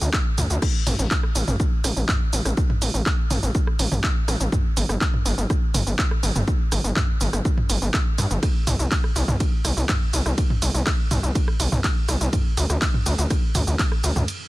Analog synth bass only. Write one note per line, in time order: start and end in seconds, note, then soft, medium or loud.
0.02 0.09 D2 medium
0.38 0.45 D2 medium
0.50 0.58 D2 medium
0.87 0.94 A1 loud
0.99 1.06 A1 medium
1.35 1.43 A1 loud
1.48 1.55 A1 medium
1.84 1.92 A1 medium
1.97 2.04 A1 medium
2.33 2.40 A1 loud
2.45 2.53 A1 medium
2.82 2.89 A1 loud
2.94 3.01 A1 medium
3.31 3.38 A1 loud
3.43 3.50 A1 medium
3.79 3.87 A1 medium
3.92 3.99 A1 medium
4.28 4.36 A1 loud
4.40 4.48 A1 medium
4.77 4.84 G1 loud
4.89 4.97 G1 medium
5.26 5.33 G1 loud
5.38 5.45 G1 medium
5.74 5.82 G1 medium
5.87 5.94 G1 medium
6.23 6.31 G1 medium
6.36 6.43 G1 medium
6.72 6.79 G1 loud
6.84 6.92 G1 medium
7.21 7.28 G1 loud
7.33 7.40 G1 medium
7.70 7.77 G1 loud
7.82 7.89 G1 medium
8.18 8.26 G2 medium
8.31 8.38 G1 medium
8.67 8.75 C2 loud
8.79 8.87 C2 medium
9.16 9.23 C2 loud
9.28 9.36 C2 medium
9.65 9.72 C2 medium
9.77 9.84 C2 medium
10.13 10.21 C2 medium
10.26 10.33 C2 medium
10.62 10.70 C2 loud
10.74 10.82 C2 medium
11.11 11.19 C2 loud
11.23 11.31 C2 medium
11.60 11.67 C2 loud
11.72 11.79 C2 medium
12.09 12.16 C2 medium
12.21 12.28 C2 medium
12.57 12.65 D2 medium
12.70 12.77 D2 medium
13.06 13.14 D2 medium
13.18 13.26 D2 medium
13.55 13.62 D2 medium
13.67 13.75 D2 medium
14.04 14.11 D2 medium
14.16 14.23 D2 medium